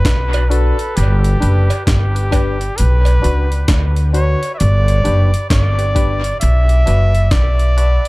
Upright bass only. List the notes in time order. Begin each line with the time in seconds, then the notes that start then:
0.06 B1
0.97 G1
1.43 F#1
1.88 G1
2.80 B1
3.25 C#2
3.69 D2
4.61 G1
5.06 F#1
5.51 G1
6.42 B1
6.88 F#1
7.32 B1